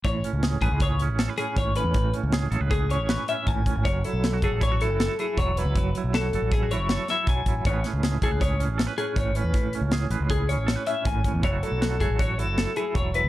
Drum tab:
HH |xxxxxxxxxx|xxxxxxxxxx|xxxxxxxxxx|xxxxxxxxxx|
SD |--o---o---|--o---o---|--o---o---|--o---oo--|
BD |o--oo---o-|o---o---oo|o--oo---o-|o---o---oo|

HH |xxxxxxxxxx|xxxxxxxxxx|xxxxxxxxxx|
SD |-oo---o---|--o---o---|--o---o---|
BD |o--oo---o-|o---o---oo|o--oo---o-|